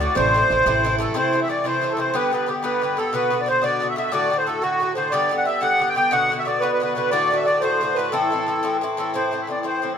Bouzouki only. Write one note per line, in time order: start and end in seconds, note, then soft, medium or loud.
0.00 0.15 A2 medium
0.00 0.15 D3 medium
0.00 0.16 A3 medium
0.00 0.17 F#4 medium
0.15 0.33 C3 medium
0.15 0.34 E3 medium
0.15 0.35 A3 loud
0.15 0.35 E4 loud
0.34 0.49 C3 medium
0.34 0.50 E3 medium
0.34 0.51 A3 medium
0.34 0.51 E4 medium
0.50 0.65 C3 medium
0.50 0.65 E3 medium
0.50 0.66 A3 medium
0.50 0.66 E4 medium
0.66 0.82 C3 medium
0.66 0.83 E3 medium
0.66 0.84 A3 medium
0.66 0.85 E4 medium
0.84 0.97 C3 medium
0.84 0.99 E3 medium
0.84 0.99 A3 medium
0.84 1.00 E4 medium
0.98 1.13 C3 medium
0.98 1.14 E3 medium
0.98 1.15 A3 medium
0.98 1.15 E4 medium
1.14 1.31 C3 medium
1.14 1.32 E3 medium
1.14 1.33 A3 medium
1.14 1.34 E4 medium
1.32 1.47 C3 medium
1.32 1.48 E3 medium
1.32 1.49 A3 medium
1.32 1.50 E4 medium
1.48 1.63 C3 medium
1.48 1.64 E3 medium
1.48 1.64 A3 medium
1.48 1.65 E4 medium
1.64 1.80 C3 medium
1.64 1.81 E3 medium
1.64 1.82 A3 medium
1.64 1.83 E4 medium
1.81 1.96 C3 medium
1.81 1.97 E3 medium
1.81 1.98 A3 medium
1.81 1.99 E4 medium
1.97 2.13 C3 medium
1.97 2.13 E3 medium
1.97 2.14 A3 medium
1.97 2.15 E4 medium
2.14 2.30 G2 medium
2.14 2.31 D3 medium
2.14 2.32 B3 medium
2.14 2.33 G4 medium
2.32 2.45 G2 medium
2.32 2.46 D3 medium
2.32 2.47 B3 medium
2.32 2.48 G4 medium
2.46 2.61 G2 soft
2.46 2.62 D3 medium
2.46 2.63 B3 medium
2.46 2.63 G4 medium
2.63 2.80 G2 medium
2.63 2.81 D3 medium
2.63 2.82 B3 medium
2.63 2.82 G4 medium
2.81 2.96 G2 medium
2.81 2.97 D3 medium
2.81 2.97 B3 medium
2.81 2.98 G4 medium
2.97 3.12 G2 medium
2.97 3.13 D3 medium
2.97 3.13 B3 medium
2.97 3.14 G4 medium
3.13 3.29 B2 medium
3.13 3.30 D3 medium
3.13 3.31 B3 medium
3.13 3.32 F#4 medium
3.30 3.45 B2 medium
3.30 3.47 D3 medium
3.30 3.47 B3 medium
3.30 3.48 F#4 medium
3.46 3.60 B2 medium
3.46 3.62 D3 medium
3.46 3.62 B3 medium
3.46 3.63 F#4 medium
3.62 3.79 B2 medium
3.62 3.80 D3 medium
3.62 3.81 B3 medium
3.62 3.82 F#4 medium
3.80 3.95 B2 medium
3.80 3.96 D3 medium
3.80 3.97 B3 medium
3.80 3.97 F#4 medium
3.96 4.11 B2 medium
3.96 4.11 D3 medium
3.96 4.13 B3 medium
3.96 4.12 F#4 medium
4.12 4.29 A2 medium
4.12 4.30 D3 medium
4.12 4.31 A3 medium
4.12 4.32 F#4 medium
4.30 4.45 A2 medium
4.30 4.46 D3 medium
4.30 4.47 A3 medium
4.30 4.48 F#4 medium
4.47 4.61 A2 medium
4.47 4.61 D3 medium
4.47 4.62 A3 medium
4.47 4.63 F#4 medium
4.62 4.79 A2 medium
4.62 4.80 D3 medium
4.62 4.81 A3 medium
4.62 4.81 F#4 medium
4.80 4.94 A2 medium
4.80 4.95 D3 medium
4.80 4.96 A3 medium
4.80 4.97 F#4 medium
4.95 5.12 A2 medium
4.95 5.12 D3 medium
4.95 5.13 A3 medium
4.95 5.13 F#4 medium
5.12 5.28 G2 medium
5.12 5.30 D3 medium
5.12 5.30 B3 medium
5.12 5.31 G4 medium
5.29 5.44 G2 medium
5.29 5.45 D3 medium
5.29 5.46 B3 medium
5.29 5.47 G4 medium
5.45 5.60 G2 medium
5.45 5.60 D3 soft
5.45 5.61 B3 soft
5.45 5.62 G4 medium
5.61 5.78 G2 medium
5.61 5.79 D3 medium
5.61 5.80 B3 medium
5.61 5.80 G4 medium
5.79 5.94 G2 medium
5.79 5.95 D3 medium
5.79 5.96 B3 medium
5.79 5.96 G4 medium
5.95 6.11 G2 medium
5.95 6.11 D3 medium
5.95 6.11 B3 medium
5.95 6.13 G4 medium
6.11 6.29 B2 medium
6.11 6.30 D3 medium
6.11 6.31 B3 medium
6.11 6.31 F#4 medium
6.30 6.44 B2 medium
6.30 6.45 D3 medium
6.30 6.46 B3 medium
6.30 6.47 F#4 medium
6.45 6.61 B2 medium
6.45 6.61 D3 soft
6.45 6.62 B3 medium
6.45 6.62 F#4 medium
6.62 6.79 B2 medium
6.62 6.80 D3 medium
6.62 6.81 B3 medium
6.62 6.81 F#4 medium
6.80 6.94 B2 medium
6.80 6.95 D3 medium
6.80 6.96 B3 medium
6.80 6.97 F#4 medium
6.95 7.11 B2 medium
6.95 7.11 D3 medium
6.95 7.13 B3 medium
6.95 7.12 F#4 medium
7.11 7.29 A2 medium
7.11 7.30 D3 medium
7.11 7.31 A3 loud
7.11 7.31 F#4 medium
7.30 7.44 A2 medium
7.30 7.45 D3 medium
7.30 7.46 A3 medium
7.30 7.48 F#4 medium
7.46 7.61 A2 medium
7.46 7.62 D3 medium
7.46 7.62 A3 medium
7.46 7.63 F#4 medium
7.62 7.80 A2 medium
7.62 7.81 D3 medium
7.62 7.81 A3 medium
7.62 7.82 F#4 medium
7.81 7.95 A2 medium
7.81 7.96 D3 medium
7.81 7.97 A3 medium
7.81 7.98 F#4 medium
7.96 8.11 A2 medium
7.96 8.13 D3 medium
7.96 8.13 A3 medium
7.96 8.13 F#4 medium
8.12 8.29 A2 medium
8.12 8.31 E3 medium
8.12 8.32 C4 medium
8.12 8.32 E4 medium
8.30 8.45 A2 medium
8.30 8.47 E3 medium
8.30 8.47 C4 medium
8.30 8.48 E4 medium
8.46 8.62 A2 medium
8.46 8.62 E3 medium
8.46 8.63 C4 soft
8.46 8.63 E4 medium
8.63 8.80 A2 medium
8.63 8.81 E3 medium
8.63 8.82 C4 medium
8.63 8.82 E4 medium
8.81 8.96 A2 medium
8.81 8.97 E3 medium
8.81 8.98 C4 medium
8.81 8.99 E4 medium
8.97 9.13 A2 medium
8.97 9.13 E3 medium
8.97 9.14 C4 medium
8.97 9.14 E4 medium
9.14 9.30 A2 medium
9.14 9.31 E3 medium
9.14 9.32 C4 medium
9.14 9.33 E4 medium
9.31 9.46 A2 soft
9.31 9.47 E3 medium
9.31 9.49 C4 medium
9.31 9.49 E4 medium
9.47 9.62 A2 soft
9.47 9.63 E3 soft
9.47 9.63 C4 soft
9.47 9.64 E4 soft
9.63 9.81 A2 medium
9.63 9.82 E3 medium
9.63 9.82 C4 medium
9.63 9.83 E4 medium
9.82 9.97 A2 medium
9.82 9.98 E3 medium
9.82 9.98 C4 medium
9.82 9.98 E4 soft